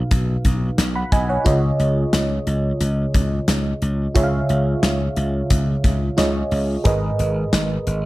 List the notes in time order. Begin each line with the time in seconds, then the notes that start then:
Already playing: B2 D#4 F#4 B4 F5
0.11 B1, kick, closed hi-hat
0.45 B1, kick, closed hi-hat
0.78 B1, snare, closed hi-hat
0.96 F#5 B5
1.12 B1 D#5 G#5, kick, closed hi-hat
1.29 C#5 F#5
1.45 C#2 C#3 F4 G#4 C#5 D#5, kick, closed hi-hat
1.79 C#2, closed hi-hat
2.13 C#2, snare, closed hi-hat
2.47 C#2, closed hi-hat
2.80 C#2, closed hi-hat
3.14 C#2, kick, closed hi-hat
3.48 C#2, snare, closed hi-hat
3.82 C#2, closed hi-hat
4.15 C#2 C#3 F4 G#4 C#5 E5, kick, closed hi-hat
4.24 F5
4.49 C#2, closed hi-hat
4.83 C#2, snare, closed hi-hat
5.16 C#2, closed hi-hat
5.50 C#2, kick, closed hi-hat
5.84 C#2, kick, closed hi-hat
6.17 C#2 F4 G#4 C#5 D#5, snare, closed hi-hat
6.51 C#2, open hi-hat
6.84 G#1 G#2 G#4 A#4 B4 D#5, kick, closed hi-hat
7.19 G#1, closed hi-hat
7.53 G#1, snare, closed hi-hat
7.87 G#1, closed hi-hat